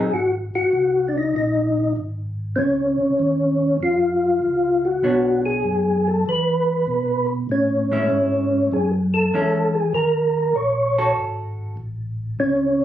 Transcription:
Already playing: hollow-body jazz guitar D#4, tonewheel organ G#4
0.12 tonewheel organ G#1 F#4
0.54 tonewheel organ G#1 F#4
0.73 tonewheel organ C2
1.08 tonewheel organ D4
1.18 tonewheel organ D#4
1.35 tonewheel organ A#1 D#4
1.96 tonewheel organ G#1
2.56 tonewheel organ C#2 C4 C#4
3.00 tonewheel organ C#2
3.19 tonewheel organ D#2
3.80 tonewheel organ F2 F4
4.42 tonewheel organ C#2
4.85 tonewheel organ F#4
5.03 tonewheel organ B1, hollow-body jazz guitar B3 D4 C#5
5.46 tonewheel organ G#4
5.64 tonewheel organ F#2
6.07 tonewheel organ A4
6.26 tonewheel organ E2 B4
6.87 tonewheel organ B2
7.49 tonewheel organ A2 C#4
7.92 hollow-body jazz guitar G#3 C#4 E4
8.10 tonewheel organ G#2
8.72 tonewheel organ F#2 G#4
9.14 tonewheel organ A4
9.33 tonewheel organ E2, hollow-body jazz guitar G#3 C#4 E4
9.75 tonewheel organ G#4
9.93 tonewheel organ D#2 A#4
10.55 tonewheel organ A#1 C#5
10.98 hollow-body jazz guitar F#4 A4
11.16 tonewheel organ G#1
11.77 tonewheel organ A1
12.39 tonewheel organ C#2 C#4

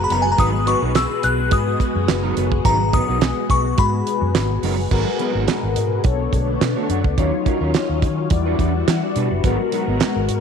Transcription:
Already playing: string machine B2 G#3 B3 F#4, analog polysynth B3 F#4 G#4 B4
0.04 synth bell B5
0.10 fingered electric bass F#1, clean electric guitar F#3 B3 D#4 A#4, synth bell A#5, closed hi-hat
0.22 synth bell G#5, muted clean electric guitar stroke
0.32 synth bell A#5
0.38 fingered electric bass G#1, clean electric guitar F#3 B3 D#4 A#4, analog polysynth B3 F#4 G#4 B4, synth bell D#6, kick, closed hi-hat
0.53 muted clean electric guitar stroke
0.66 clean electric guitar F#3 B3 D#4 B4, synth bell C#6, closed hi-hat
0.81 fingered electric bass B1, clean electric guitar F#3 B3 D#4 A#4
0.95 synth bell E6, snare, clap, closed hi-hat
1.10 muted clean electric guitar stroke
1.23 fingered electric bass B1, synth bell F#6, closed hi-hat
1.38 muted clean electric guitar stroke
1.51 fingered electric bass G#2, synth bell D#6, muted clean electric guitar stroke, kick, closed hi-hat
1.66 muted clean electric guitar stroke
1.80 kick, closed hi-hat
1.95 fingered electric bass F#2, muted clean electric guitar stroke
2.08 fingered electric bass F#1, muted clean electric guitar stroke, snare, clap, closed hi-hat
2.23 clean electric guitar F#3 B3 D#4 A#4
2.36 fingered electric bass F#1, clean electric guitar F#3 B3 D#4 A#4, closed hi-hat
2.52 muted clean electric guitar stroke, kick
2.65 fingered electric bass G#1, clean electric guitar F#3 B3 D#4 A#4, synth bell A#5, kick, closed hi-hat
2.80 muted clean electric guitar stroke
2.93 clean electric guitar F#3 B3 D#4 A#4, synth bell D#6, kick, closed hi-hat
3.08 fingered electric bass B1, clean electric guitar F#3 B3 D#4 A#4
3.21 muted clean electric guitar stroke, snare, clap, closed hi-hat
3.36 muted clean electric guitar stroke
3.50 fingered electric bass B1, synth bell C#6, kick, closed hi-hat
3.64 muted clean electric guitar stroke
3.78 fingered electric bass G#2, synth bell B5, muted clean electric guitar stroke, kick, closed hi-hat
3.93 muted clean electric guitar stroke
4.07 closed hi-hat
4.21 fingered electric bass F#2, muted clean electric guitar stroke
4.35 fingered electric bass G#1, muted clean electric guitar stroke, snare, clap, closed hi-hat
4.49 muted clean electric guitar stroke
4.63 fingered electric bass F#1, clean electric guitar F#3 B3 D#4 A#4, open hi-hat
4.78 muted clean electric guitar stroke
4.90 fingered electric bass G#1, string machine A#2 B2 G#3 F#4, clean electric guitar F#3 B3 D#4 A#4, analog polysynth F#4 G#4 A#4 B4, kick, crash
5.06 muted clean electric guitar stroke
5.19 clean electric guitar F#3 B3 D#4 B4, closed hi-hat
5.34 fingered electric bass G#1, clean electric guitar F#3 B3 D#4 A#4
5.48 snare, clap, closed hi-hat
5.63 fingered electric bass G#1, muted clean electric guitar stroke
5.76 fingered electric bass G#2, closed hi-hat
5.91 muted clean electric guitar stroke
6.04 fingered electric bass B1, string machine D3 A3 B3 D4, analog polysynth B3 D4 A4 C#5, muted clean electric guitar stroke, kick, closed hi-hat
6.20 muted clean electric guitar stroke
6.33 fingered electric bass B1, kick, closed hi-hat
6.48 muted clean electric guitar stroke
6.61 fingered electric bass B2, muted clean electric guitar stroke, snare, clap, closed hi-hat
6.76 clean electric guitar A3 D4 F#4 C#5, analog polysynth A5
6.89 fingered electric bass F#2, clean electric guitar A3 D4 F#4 C#5, analog polysynth F#5, closed hi-hat
7.04 fingered electric bass C#2, analog polysynth D5, muted clean electric guitar stroke, kick
7.17 fingered electric bass D#2, string machine D#3 F#3 C#4 F4, analog polysynth F#3 D#4 F4 C#5, clean electric guitar F#3 C#4 F4 A#4, kick, closed hi-hat
7.33 muted clean electric guitar stroke
7.46 clean electric guitar F#3 C#4 F4 A#4, kick, closed hi-hat
7.60 fingered electric bass D#2, clean electric guitar F#3 C#4 F4 A#4
7.74 muted clean electric guitar stroke, snare, clap, closed hi-hat
7.89 fingered electric bass D#2, muted clean electric guitar stroke
8.02 fingered electric bass D#3, kick, closed hi-hat
8.18 muted clean electric guitar stroke
8.30 fingered electric bass E2, string machine E3 G3 D4 F#4, analog polysynth G3 E4 F#4 D5, muted clean electric guitar stroke, kick, closed hi-hat
8.46 clean electric guitar G3 D4 F#4 B4
8.59 fingered electric bass E2, clean electric guitar G3 D4 F#4 B4, kick, closed hi-hat
8.74 muted clean electric guitar stroke
8.87 fingered electric bass E3, analog polysynth F#5, muted clean electric guitar stroke, snare, clap, closed hi-hat
9.02 analog polysynth D5, muted clean electric guitar stroke
9.16 fingered electric bass B2, clean electric guitar G3 D4 F#4 B4, closed hi-hat
9.31 fingered electric bass F#1, analog polysynth B4, muted clean electric guitar stroke
9.43 fingered electric bass G#1, string machine B2 G#3 F#4 A#4, clean electric guitar F#3 B3 D#4 A#4, analog polysynth G#3 B3 F#4 A#4, kick, closed hi-hat
9.59 muted clean electric guitar stroke
9.72 clean electric guitar F#3 B3 D#4 B4, closed hi-hat
9.87 fingered electric bass G#1, clean electric guitar F#3 B3 D#4 A#4
10.00 snare, clap, closed hi-hat
10.15 fingered electric bass G#1, muted clean electric guitar stroke
10.29 fingered electric bass G#2, closed hi-hat

